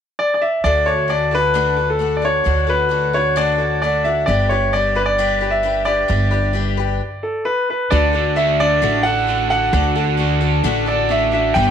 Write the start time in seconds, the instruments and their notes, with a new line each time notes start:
0.19 grand piano D5
0.34 grand piano D5
0.42 grand piano E5
0.64 upright bass D2, twelve-string acoustic guitar D3 A3 D4 F#4 A4, grand piano D5
0.86 twelve-string acoustic guitar D4 F#4 A4, grand piano C#5
1.08 twelve-string acoustic guitar A3 D4 F#4 A4, grand piano D5
1.31 twelve-string acoustic guitar D4 F#4 A4, grand piano B4
1.54 twelve-string acoustic guitar D3 A3 D4 F#4 A4
1.76 twelve-string acoustic guitar D4 F#4 A4
1.90 grand piano A4
1.99 twelve-string acoustic guitar A3 D4 F#4 A4
2.17 grand piano D5
2.22 twelve-string acoustic guitar D4 F#4 A4, grand piano C#5
2.44 upright bass D2, twelve-string acoustic guitar D3 A3 D4 F#4 A4
2.67 twelve-string acoustic guitar D4 F#4 A4, grand piano B4
2.89 twelve-string acoustic guitar A3 D4 F#4 A4
3.13 twelve-string acoustic guitar D4 F#4 A4, grand piano C#5
3.36 twelve-string acoustic guitar D3 A3 D4 F#4 A4, grand piano D5
3.58 twelve-string acoustic guitar D4 F#4 A4
3.82 twelve-string acoustic guitar A3 D4 F#4 A4, grand piano D5
4.04 twelve-string acoustic guitar D4 F#4 A4, grand piano E5
4.26 upright bass G1, twelve-string acoustic guitar G3 D4 G4 B4, grand piano D5
4.49 twelve-string acoustic guitar D4 G4 B4, grand piano C#5
4.73 twelve-string acoustic guitar G3 D4 G4 B4, grand piano D5
4.95 twelve-string acoustic guitar D4 G4 B4, grand piano B4
5.06 grand piano D5
5.18 twelve-string acoustic guitar G3 D4 G4 B4
5.41 twelve-string acoustic guitar D4 G4 B4
5.51 grand piano E5
5.63 twelve-string acoustic guitar G3 D4 G4 B4
5.85 twelve-string acoustic guitar D4 G4 B4, grand piano D5
6.08 upright bass G1, twelve-string acoustic guitar G3 D4 G4 B4
6.31 twelve-string acoustic guitar D4 G4 B4
6.53 twelve-string acoustic guitar G3 D4 G4 B4
6.77 twelve-string acoustic guitar D4 G4 B4
7.23 grand piano A4
7.45 grand piano B4
7.70 grand piano B4
7.91 upright bass D2, twelve-string acoustic guitar D3 A3 D4 F#4 A4, grand piano D5
8.13 twelve-string acoustic guitar D4 F#4 A4
8.36 twelve-string acoustic guitar A3 D4 F#4 A4, grand piano E5
8.60 overdriven electric guitar D3, twelve-string acoustic guitar D4 F#4 A4, grand piano D5
8.82 upright bass A1, twelve-string acoustic guitar D3 A3 D4 F#4 A4
9.03 twelve-string acoustic guitar F#4 A4, grand piano F#5
9.08 twelve-string acoustic guitar D4
9.27 twelve-string acoustic guitar A3 D4 F#4 A4
9.50 overdriven electric guitar D3, twelve-string acoustic guitar D4 F#4 A4, grand piano F#5
9.73 upright bass D2, twelve-string acoustic guitar D3 A3 D4 F#4 A4
9.96 twelve-string acoustic guitar D4 F#4 A4
10.17 twelve-string acoustic guitar A3 D4 F#4 A4
10.41 overdriven electric guitar D3, twelve-string acoustic guitar D4 F#4 A4
10.64 upright bass A1, twelve-string acoustic guitar D3 A3 D4 F#4 A4
10.86 twelve-string acoustic guitar D4 F#4 A4, grand piano D5
11.09 twelve-string acoustic guitar A3 D4 F#4 A4, grand piano E5
11.32 overdriven electric guitar D3, twelve-string acoustic guitar D4 F#4 A4, grand piano E5
11.54 upright bass G1, twelve-string acoustic guitar G3 D4 G4 B4, grand piano G5